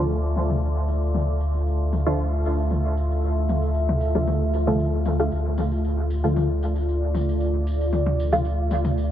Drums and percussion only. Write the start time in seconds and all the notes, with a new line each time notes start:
0.11 tambourine
0.36 high tom, tambourine
0.50 mid tom, tambourine
0.62 tambourine
0.88 tambourine
1.03 tambourine
1.14 high tom, tambourine
1.40 tambourine
1.54 tambourine
1.67 tambourine
1.93 high tom, tambourine
2.07 tambourine
2.19 tambourine
2.45 tambourine
2.59 tambourine
2.70 high tom, tambourine
2.97 tambourine
3.11 tambourine
3.24 tambourine
3.49 high tom, tambourine
3.62 tambourine
3.74 tambourine
3.89 mid tom
4.01 tambourine
4.15 mid tom, tambourine
4.27 high tom, tambourine
4.54 tambourine
4.67 mid tom, tambourine
4.80 tambourine
5.05 high tom, tambourine
5.19 tambourine
5.32 tambourine
5.58 high tom, tambourine
5.72 tambourine
5.85 tambourine
6.10 tambourine
6.24 tambourine
6.36 high tom, tambourine
6.62 tambourine
6.76 tambourine
6.89 tambourine
7.15 high tom, tambourine
7.29 tambourine
7.41 tambourine
7.67 tambourine
7.81 tambourine
7.93 high tom, tambourine
8.06 mid tom
8.20 tambourine
8.32 mid tom, tambourine
8.45 tambourine
8.71 high tom, tambourine
8.84 mid tom, tambourine
8.98 tambourine